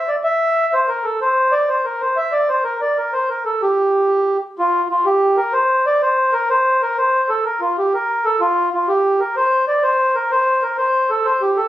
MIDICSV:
0, 0, Header, 1, 2, 480
1, 0, Start_track
1, 0, Tempo, 318810
1, 1113, Time_signature, 12, 3, 24, 8
1, 17587, End_track
2, 0, Start_track
2, 0, Title_t, "Accordion"
2, 0, Program_c, 0, 21
2, 125, Note_on_c, 0, 74, 78
2, 239, Note_off_c, 0, 74, 0
2, 355, Note_on_c, 0, 76, 96
2, 1105, Note_on_c, 0, 72, 84
2, 1117, Note_off_c, 0, 76, 0
2, 1328, Note_on_c, 0, 70, 76
2, 1357, Note_off_c, 0, 72, 0
2, 1568, Note_on_c, 0, 69, 71
2, 1589, Note_off_c, 0, 70, 0
2, 1804, Note_off_c, 0, 69, 0
2, 1830, Note_on_c, 0, 72, 85
2, 2289, Note_on_c, 0, 74, 84
2, 2328, Note_off_c, 0, 72, 0
2, 2544, Note_on_c, 0, 72, 84
2, 2550, Note_off_c, 0, 74, 0
2, 2779, Note_on_c, 0, 70, 71
2, 2798, Note_off_c, 0, 72, 0
2, 3026, Note_on_c, 0, 72, 78
2, 3035, Note_off_c, 0, 70, 0
2, 3258, Note_on_c, 0, 76, 86
2, 3279, Note_off_c, 0, 72, 0
2, 3494, Note_on_c, 0, 74, 79
2, 3515, Note_off_c, 0, 76, 0
2, 3747, Note_on_c, 0, 72, 80
2, 3753, Note_off_c, 0, 74, 0
2, 3969, Note_on_c, 0, 70, 81
2, 3975, Note_off_c, 0, 72, 0
2, 4231, Note_off_c, 0, 70, 0
2, 4233, Note_on_c, 0, 74, 79
2, 4481, Note_on_c, 0, 70, 76
2, 4483, Note_off_c, 0, 74, 0
2, 4710, Note_on_c, 0, 72, 81
2, 4727, Note_off_c, 0, 70, 0
2, 4956, Note_on_c, 0, 70, 74
2, 4962, Note_off_c, 0, 72, 0
2, 5181, Note_off_c, 0, 70, 0
2, 5198, Note_on_c, 0, 69, 67
2, 5446, Note_off_c, 0, 69, 0
2, 5451, Note_on_c, 0, 67, 72
2, 6586, Note_off_c, 0, 67, 0
2, 6907, Note_on_c, 0, 65, 88
2, 7347, Note_off_c, 0, 65, 0
2, 7369, Note_on_c, 0, 65, 79
2, 7612, Note_off_c, 0, 65, 0
2, 7612, Note_on_c, 0, 67, 93
2, 8087, Note_on_c, 0, 70, 90
2, 8101, Note_off_c, 0, 67, 0
2, 8327, Note_on_c, 0, 72, 97
2, 8331, Note_off_c, 0, 70, 0
2, 8819, Note_off_c, 0, 72, 0
2, 8827, Note_on_c, 0, 74, 88
2, 9061, Note_off_c, 0, 74, 0
2, 9066, Note_on_c, 0, 72, 93
2, 9529, Note_on_c, 0, 70, 96
2, 9547, Note_off_c, 0, 72, 0
2, 9772, Note_off_c, 0, 70, 0
2, 9785, Note_on_c, 0, 72, 105
2, 10267, Note_off_c, 0, 72, 0
2, 10271, Note_on_c, 0, 70, 91
2, 10503, Note_off_c, 0, 70, 0
2, 10508, Note_on_c, 0, 72, 97
2, 10976, Note_on_c, 0, 69, 86
2, 10988, Note_off_c, 0, 72, 0
2, 11214, Note_on_c, 0, 70, 94
2, 11215, Note_off_c, 0, 69, 0
2, 11451, Note_on_c, 0, 65, 81
2, 11454, Note_off_c, 0, 70, 0
2, 11693, Note_off_c, 0, 65, 0
2, 11711, Note_on_c, 0, 67, 78
2, 11942, Note_off_c, 0, 67, 0
2, 11952, Note_on_c, 0, 70, 94
2, 12422, Note_on_c, 0, 69, 93
2, 12429, Note_off_c, 0, 70, 0
2, 12652, Note_on_c, 0, 65, 95
2, 12658, Note_off_c, 0, 69, 0
2, 13092, Note_off_c, 0, 65, 0
2, 13147, Note_on_c, 0, 65, 78
2, 13368, Note_on_c, 0, 67, 90
2, 13380, Note_off_c, 0, 65, 0
2, 13853, Note_on_c, 0, 70, 83
2, 13857, Note_off_c, 0, 67, 0
2, 14092, Note_off_c, 0, 70, 0
2, 14099, Note_on_c, 0, 72, 99
2, 14535, Note_off_c, 0, 72, 0
2, 14568, Note_on_c, 0, 74, 89
2, 14800, Note_on_c, 0, 72, 98
2, 14809, Note_off_c, 0, 74, 0
2, 15283, Note_on_c, 0, 70, 89
2, 15292, Note_off_c, 0, 72, 0
2, 15525, Note_on_c, 0, 72, 102
2, 15526, Note_off_c, 0, 70, 0
2, 15994, Note_on_c, 0, 70, 88
2, 16014, Note_off_c, 0, 72, 0
2, 16217, Note_off_c, 0, 70, 0
2, 16226, Note_on_c, 0, 72, 92
2, 16712, Note_on_c, 0, 69, 80
2, 16723, Note_off_c, 0, 72, 0
2, 16938, Note_on_c, 0, 72, 93
2, 16959, Note_off_c, 0, 69, 0
2, 17182, Note_on_c, 0, 67, 76
2, 17192, Note_off_c, 0, 72, 0
2, 17414, Note_on_c, 0, 69, 74
2, 17433, Note_off_c, 0, 67, 0
2, 17587, Note_off_c, 0, 69, 0
2, 17587, End_track
0, 0, End_of_file